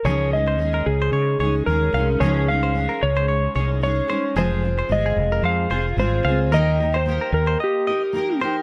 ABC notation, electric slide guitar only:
X:1
M:4/4
L:1/16
Q:"Swing 16ths" 1/4=111
K:Dblyd
V:1 name="Electric slide guitar"
d2 e4 A6 B4 | d2 f4 d6 d4 | c4 e4 f4 c4 | e3 c3 B2 G6 z2 |]